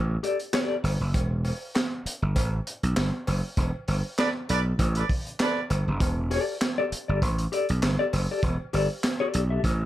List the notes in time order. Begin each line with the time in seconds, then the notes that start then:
Already playing: A1
0.23 G4 A4 D5, closed hi-hat
0.40 closed hi-hat
0.53 G4 A4 D5, snare, clap, closed hi-hat, cowbell
0.84 G1, open hi-hat, cowbell
1.01 F#1
1.14 E1, kick, closed hi-hat, cowbell
1.45 open hi-hat, cowbell
1.75 snare, clap, closed hi-hat, cowbell
2.06 muted slap bass stroke, closed hi-hat
2.22 G1
2.36 A1, kick, closed hi-hat, cowbell
2.67 closed hi-hat
2.83 B1, closed hi-hat
2.96 G1, snare, clap, closed hi-hat, cowbell
3.27 F#1, open hi-hat, cowbell
3.57 E1, kick, closed hi-hat, cowbell
3.88 G1, open hi-hat, cowbell
4.18 A4 B4 D5, snare, clap, closed hi-hat, cowbell
4.49 B1 A4 B4 D5, closed hi-hat
4.79 A1, kick, closed hi-hat, cowbell
4.95 A4 B4 D5, closed hi-hat
5.09 kick, open hi-hat
5.27 closed hi-hat
5.39 A4 B4 D5, snare, clap, closed hi-hat, cowbell
5.70 G1, closed hi-hat, cowbell
5.88 F#1
6.00 E1, kick, closed hi-hat, cowbell
6.31 G4 A4 D5, open hi-hat, cowbell
6.61 snare, clap, closed hi-hat, cowbell
6.78 G4 A4 D5
6.92 muted slap bass stroke, closed hi-hat
7.08 G1 G4 A4 D5
7.22 A1, kick, closed hi-hat, cowbell
7.38 closed hi-hat
7.52 G4 A4 D5, closed hi-hat
7.69 B1, closed hi-hat
7.82 G1, snare, clap, closed hi-hat, cowbell
7.99 G4 A4 D5
8.13 F#1, open hi-hat, cowbell
8.31 G4 A4 D5
8.43 E1, kick, closed hi-hat, cowbell
8.73 G1 G4 A4 D5, open hi-hat, cowbell
9.03 snare, clap, closed hi-hat, cowbell
9.20 G4 A4 D5
9.34 B1, closed hi-hat
9.50 G4 A4 E5
9.64 A1, kick, closed hi-hat, cowbell